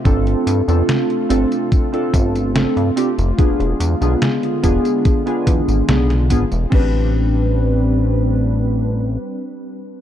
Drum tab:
CC |----------------|----------------|x---------------|
HH |xxxxxxxxxxxxxxxx|xxxxxxxxxxxxxxxx|----------------|
TB |x-xxx-xxx-xxx-xx|x-xxx-xxx-xxx-xx|----------------|
SD |----o-------o---|----o-------oo--|----------------|
BD |o-------o-o-----|o-----o-o-o---o-|o---------------|